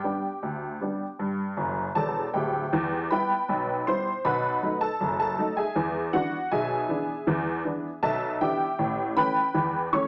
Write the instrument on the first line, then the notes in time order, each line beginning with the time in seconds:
honky-tonk piano
Already playing: G4 G5
0.04 G3 B3 D4
0.43 D2
0.81 G3 B3 D4
1.19 G2
1.57 F#1 F#2
1.95 E1 E2 A4 D5 A5
2.34 D1 D2 G4 E5 G5
2.73 E2 E3
3.11 G3 B3 E4 B4 G5 B5
3.49 B1 B2
3.87 G3 B3 E4 C5 C6
4.25 B1 B2 B4 F#5 B5
4.62 F#3 A3 D#4
4.81 A4 A5
5.00 F#1 F#2
5.20 A4 A5
5.38 F#3 A3 D#4
5.57 G#4 E5 G#5
5.76 E2 E3
6.13 E3 B3 D4 F#4 F#5
6.52 B1 B2 G#4 E5 G#5
6.89 E3 B3 D4
7.27 E2 E3
7.65 E3 B3 D4
8.03 B1 B2 A4 E5 A5
8.41 E3 B3 D4 G4 E5 G5
8.79 A1 A2
9.17 E3 A3 C#4 B4 G5 B5
9.54 E2 E3
9.93 E3 A3 C#4 C#5 C#6